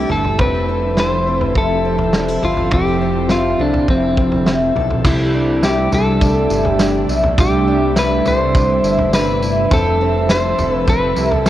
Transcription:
Already playing: ambient pad C3 G3 A3 D4 E4, twelve-string acoustic guitar G3 E4, clean electric guitar G4
0.10 analog synth bass G1, twelve-string acoustic guitar A4, clean electric guitar A4, floor tom
0.25 floor tom
0.38 analog synth bass F1, ambient pad F3 C4 G4 A4, twelve-string acoustic guitar C4, clean electric guitar B4, kick, floor tom
0.68 twelve-string acoustic guitar C4
0.97 twelve-string acoustic guitar E4, clean electric guitar C5, snare
1.27 twelve-string acoustic guitar C4
1.41 clean electric guitar B4, floor tom
1.55 twelve-string acoustic guitar E4, clean electric guitar A4, kick
1.85 twelve-string acoustic guitar C4
1.99 floor tom
2.13 twelve-string acoustic guitar D4, snare
2.29 twelve-string acoustic guitar E4
2.43 analog synth bass G1, clean electric guitar F4, twelve-string acoustic guitar A4, floor tom
2.57 floor tom
2.71 analog synth bass F1, twelve-string acoustic guitar C4, clean electric guitar G4, kick, floor tom
3.01 twelve-string acoustic guitar C4
3.29 twelve-string acoustic guitar E4, clean electric guitar F4, snare
3.59 analog synth bass C2, twelve-string acoustic guitar C4, clean electric guitar D4
3.74 floor tom
3.88 analog synth bass F1, clean electric guitar C4, twelve-string acoustic guitar E4, kick
4.17 twelve-string acoustic guitar C4, kick
4.32 floor tom
4.46 twelve-string acoustic guitar E4, snare
4.76 analog synth bass B1, twelve-string acoustic guitar A4, floor tom
4.91 floor tom
5.04 analog synth bass C2, ambient pad C3 G3 A3 D4 E5, twelve-string acoustic guitar G3, clean electric guitar E4, kick, floor tom, crash, tambourine
5.34 twelve-string acoustic guitar D4
5.63 twelve-string acoustic guitar E4, clean electric guitar G4, snare, tambourine
5.92 analog synth bass C2, twelve-string acoustic guitar A4, clean electric guitar A4, floor tom, tambourine
6.21 twelve-string acoustic guitar D4, kick, floor tom, tambourine
6.50 analog synth bass G1, twelve-string acoustic guitar E4, tambourine
6.65 floor tom
6.71 clean electric guitar G4
6.79 twelve-string acoustic guitar D4, snare, tambourine
7.09 analog synth bass B1, twelve-string acoustic guitar E4, tambourine
7.23 floor tom
7.38 analog synth bass C2, twelve-string acoustic guitar G3, clean electric guitar G4, kick, floor tom, tambourine
7.67 twelve-string acoustic guitar D4
7.96 twelve-string acoustic guitar E4, clean electric guitar B4, snare, tambourine
8.25 analog synth bass C2, twelve-string acoustic guitar A4, clean electric guitar C5, floor tom, tambourine
8.55 twelve-string acoustic guitar D4, kick, floor tom, tambourine
8.83 analog synth bass G1, twelve-string acoustic guitar E4, tambourine
8.98 floor tom
9.13 twelve-string acoustic guitar D4, clean electric guitar B4, snare, tambourine
9.42 twelve-string acoustic guitar E4, tambourine
9.71 analog synth bass F1, ambient pad F3 C4 G4 A4, twelve-string acoustic guitar C4, clean electric guitar A4, kick, floor tom, tambourine
10.01 twelve-string acoustic guitar C4
10.29 twelve-string acoustic guitar E4, clean electric guitar C5, snare, tambourine
10.59 analog synth bass F1, twelve-string acoustic guitar A4, floor tom, tambourine
10.74 clean electric guitar B4
10.88 twelve-string acoustic guitar C4, clean electric guitar B4, kick, floor tom, tambourine
11.17 analog synth bass C2, twelve-string acoustic guitar E4, tambourine
11.32 floor tom
11.36 clean electric guitar A4
11.46 twelve-string acoustic guitar C4, snare, tambourine

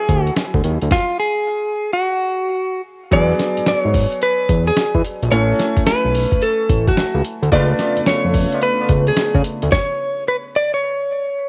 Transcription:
Already playing: grand piano F#3 C#4 E4 G#4, clean electric guitar G#4
0.09 analog synth bass D2, kick, closed hi-hat
0.27 closed hi-hat
0.36 snare, closed hi-hat
0.54 analog synth bass D2, kick
0.64 analog synth bass D#2, closed hi-hat
0.82 analog synth bass D2, closed hi-hat
0.91 clean electric guitar F4, kick, snare
1.20 clean electric guitar G#4
1.93 clean electric guitar F#4
3.11 analog synth bass E2, grand piano F#3 B3 D4 G#4, clean electric guitar D5, kick, closed hi-hat
3.39 snare, closed hi-hat
3.57 analog synth bass G#2, closed hi-hat
3.66 analog synth bass G#2, clean electric guitar D5, snare, closed hi-hat
3.79 clean electric guitar C#5
3.85 analog synth bass G#2
3.94 kick, open hi-hat
4.12 closed hi-hat
4.22 clean electric guitar B4, closed hi-hat
4.49 analog synth bass E2, kick, closed hi-hat
4.67 clean electric guitar G#4, closed hi-hat
4.77 snare, closed hi-hat
4.95 analog synth bass E3, kick
5.04 closed hi-hat
5.23 analog synth bass A#1, closed hi-hat
5.31 analog synth bass A1, grand piano A3 C#4 E4 A4, clean electric guitar C#5, closed hi-hat
5.59 snare, closed hi-hat
5.77 analog synth bass B1, kick, closed hi-hat
5.87 analog synth bass B1, clean electric guitar B4, snare, closed hi-hat
6.05 analog synth bass B1
6.15 open hi-hat
6.32 kick, closed hi-hat
6.42 clean electric guitar A4, closed hi-hat
6.69 analog synth bass A1, kick, closed hi-hat
6.87 clean electric guitar F#4, kick, closed hi-hat
6.97 analog synth bass C#2, snare, closed hi-hat
7.15 analog synth bass C#2
7.25 closed hi-hat
7.42 analog synth bass D2, closed hi-hat
7.52 analog synth bass C#2, analog synth pad C#3 A3 B3 D4 F4, grand piano A3 D4 F4 B4, horn section A3 B3 D4 F4, clean electric guitar D5, kick, closed hi-hat
7.79 horn section A3 B3 D4 F4, snare, closed hi-hat
7.97 analog synth bass F2, closed hi-hat
8.07 analog synth bass F2, clean electric guitar C#5, snare, closed hi-hat
8.25 analog synth bass F2
8.34 kick, open hi-hat
8.52 horn section A3 B3 D4 F4, closed hi-hat
8.62 clean electric guitar B4, closed hi-hat
8.80 horn section A3 B3 D4 F4
8.89 analog synth bass C#2, kick, closed hi-hat
9.07 clean electric guitar G#4, closed hi-hat
9.17 snare, closed hi-hat
9.35 analog synth bass C#3, kick
9.44 closed hi-hat
9.62 analog synth bass D2, closed hi-hat
9.72 clean electric guitar C#5, kick, snare
10.28 clean electric guitar B4
10.56 clean electric guitar D5
10.74 clean electric guitar C#5

